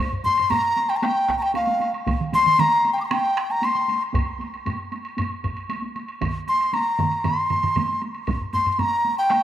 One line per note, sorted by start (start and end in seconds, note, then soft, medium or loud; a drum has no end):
0.12 taiko low-mid medium
0.24 0.52 C6 medium
0.24 taiko low-mid medium
0.24 taiko high medium
0.37 taiko low-mid medium
0.37 taiko high soft
0.37 high woodblock soft
0.50 0.91 A#5 medium
0.50 taiko low-mid loud
0.50 taiko high medium
0.50 high woodblock medium
0.63 taiko high soft
0.76 taiko high medium
0.76 high woodblock soft
0.89 0.98 G5 medium
0.89 taiko high soft
0.89 high woodblock soft
0.96 1.05 A#5 medium
1.02 1.38 G5 medium
1.02 taiko rim medium
1.02 taiko high medium
1.02 high woodblock medium
1.15 taiko high soft
1.29 taiko rim medium
1.29 taiko medium
1.29 taiko high medium
1.29 high woodblock soft
1.39 1.55 G5 medium
1.39 1.44 A#5 soft
1.39 taiko high soft
1.39 high woodblock soft
1.54 1.92 F5 medium
1.54 taiko high medium
1.54 high woodblock medium
1.67 taiko high medium
1.80 taiko high medium
1.80 high woodblock soft
1.93 taiko high soft
1.93 high woodblock soft
2.06 taiko loud
2.06 taiko mid medium
2.06 taiko high medium
2.06 high woodblock medium
2.21 taiko mid medium
2.33 2.61 C6 medium
2.33 taiko mid medium
2.33 taiko high medium
2.33 high woodblock soft
2.46 taiko mid medium
2.46 taiko high soft
2.46 high woodblock soft
2.59 2.93 A#5 medium
2.59 taiko mid medium
2.59 taiko high medium
2.59 high woodblock medium
2.72 taiko high soft
2.85 taiko high medium
2.85 high woodblock soft
2.93 2.96 G5 soft
2.98 3.00 G5 medium
2.98 3.04 D6 soft
2.98 taiko high soft
2.98 high woodblock soft
3.05 3.11 A#5 soft
3.05 3.07 C6 soft
3.11 3.52 G5 medium
3.11 taiko rim medium
3.11 taiko high medium
3.11 high woodblock medium
3.24 taiko high soft
3.37 taiko rim medium
3.37 high woodblock soft
3.50 3.66 A#5 medium
3.50 taiko high soft
3.50 high woodblock soft
3.62 4.03 C6 medium
3.62 taiko high medium
3.62 high woodblock medium
3.75 taiko high medium
3.88 taiko high medium
3.88 high woodblock soft
4.01 taiko high soft
4.01 high woodblock soft
4.14 taiko loud
4.14 taiko low-mid medium
4.14 taiko high medium
4.14 high woodblock medium
4.27 taiko high soft
4.40 taiko high medium
4.40 high woodblock soft
4.53 taiko high soft
4.53 high woodblock soft
4.66 taiko low-mid loud
4.66 taiko high medium
4.66 high woodblock medium
4.92 taiko high soft
4.92 high woodblock soft
5.04 taiko high soft
5.04 high woodblock soft
5.17 taiko low-mid medium
5.17 taiko high medium
5.17 high woodblock medium
5.31 taiko high soft
5.44 taiko medium
5.44 taiko low-mid loud
5.44 taiko high soft
5.44 high woodblock soft
5.57 taiko high soft
5.57 high woodblock soft
5.69 taiko high medium
5.69 high woodblock medium
5.82 taiko high medium
5.96 taiko high soft
5.96 high woodblock soft
6.08 taiko high soft
6.08 high woodblock soft
6.21 taiko medium
6.21 taiko low-mid medium
6.21 taiko mid loud
6.21 taiko high medium
6.21 high woodblock medium
6.34 taiko high soft
6.47 6.75 C6 medium
6.47 taiko high soft
6.47 high woodblock soft
6.60 taiko high soft
6.60 high woodblock soft
6.73 7.27 A#5 medium
6.73 taiko high medium
6.73 high woodblock medium
6.86 taiko high soft
6.99 taiko low-mid loud
6.99 taiko mid loud
6.99 taiko high soft
6.99 high woodblock soft
7.12 taiko high soft
7.12 high woodblock soft
7.24 8.02 C6 medium
7.24 taiko low-mid medium
7.24 taiko mid medium
7.24 taiko high medium
7.24 high woodblock soft
7.50 taiko low-mid medium
7.50 taiko mid medium
7.50 taiko high medium
7.50 high woodblock soft
7.63 taiko low-mid medium
7.63 taiko mid medium
7.63 high woodblock soft
7.76 taiko low-mid medium
7.76 taiko mid medium
7.76 taiko high medium
7.76 high woodblock soft
7.89 taiko high medium
8.02 taiko high medium
8.02 high woodblock soft
8.15 taiko high soft
8.15 high woodblock soft
8.27 taiko loud
8.27 taiko low-mid medium
8.27 taiko high medium
8.27 high woodblock medium
8.41 taiko low-mid medium
8.53 8.72 C6 medium
8.53 taiko low-mid medium
8.53 taiko high soft
8.53 high woodblock soft
8.66 taiko low-mid medium
8.66 high woodblock soft
8.72 8.81 C6 medium
8.79 9.18 A#5 medium
8.79 taiko low-mid medium
8.79 taiko high medium
8.79 high woodblock soft
8.92 taiko high soft
9.05 taiko high soft
9.05 high woodblock soft
9.17 9.43 G5 medium
9.17 taiko high soft
9.17 high woodblock soft
9.30 taiko rim medium
9.30 taiko high medium
9.30 high woodblock medium